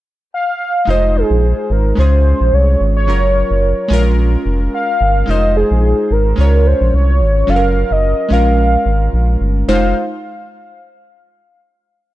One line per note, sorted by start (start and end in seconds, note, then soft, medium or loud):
0.34 0.90 F5 loud
0.85 1.23 F1 loud
0.85 1.94 G#3 medium
0.85 1.95 D#4 medium
0.85 1.96 F4 medium
0.85 1.18 D#5 loud
0.90 1.97 C5 medium
1.16 1.73 G#4 loud
1.30 1.53 A#1 loud
1.70 1.93 G#1 medium
1.70 1.99 A#4 medium
1.95 2.34 C#2 loud
1.95 3.04 G#3 medium
1.95 3.05 C#4 medium
1.95 3.06 F4 medium
1.95 2.55 C5 loud
2.00 3.07 G#4 medium
2.41 2.51 A#1 medium
2.53 2.76 C2 medium
2.53 2.96 C#5 medium
2.81 3.09 G#1 medium
2.97 4.02 C#5 medium
3.07 3.44 F#1 loud
3.07 3.90 F#3 medium
3.07 3.89 C#4 medium
3.07 3.90 F4 medium
3.07 3.91 A#4 medium
3.51 3.74 F#1 medium
3.88 4.36 A#1 loud
3.88 5.24 G#3 medium
3.88 5.25 C#4 medium
3.88 5.26 F4 medium
3.93 5.27 A#4 medium
4.46 4.69 F1 medium
4.74 5.31 F5 loud
5.01 5.24 G1 loud
5.26 5.64 F1 loud
5.26 6.34 G#3 medium
5.26 6.36 D#4 medium
5.26 6.37 F4 medium
5.26 5.56 D#5 loud
5.31 6.37 C5 medium
5.57 6.13 G#4 loud
5.71 5.94 A#1 medium
6.11 6.34 G#1 medium
6.11 6.68 A#4 loud
6.36 6.74 C#2 loud
6.36 7.45 G#3 medium
6.36 7.46 C#4 medium
6.36 7.47 F4 medium
6.41 7.47 C#5 medium
6.67 6.94 C5 loud
6.81 6.91 A#1 loud
6.93 7.22 C2 medium
6.93 7.51 C#5 loud
7.21 7.44 G#1 loud
7.47 7.84 F#1 loud
7.47 8.30 F#3 medium
7.47 8.29 C#4 medium
7.47 8.31 F4 medium
7.47 7.56 A4 medium
7.47 7.93 F5 loud
7.56 8.32 A#4 medium
7.91 8.14 F#1 medium
7.91 8.34 D#5 loud
8.29 8.77 A#1 loud
8.29 9.65 G#3 medium
8.29 9.65 C#4 medium
8.29 9.66 F4 medium
8.29 9.42 F5 loud
8.33 9.67 A#4 medium
8.86 9.09 G#1 medium
9.13 9.36 A#1 medium
9.41 9.64 G1 medium
9.68 9.94 F1 loud
9.68 9.94 G#3 medium
9.68 9.94 D#4 medium
9.68 9.94 F4 medium
9.68 9.94 C5 medium
9.68 9.95 F5 medium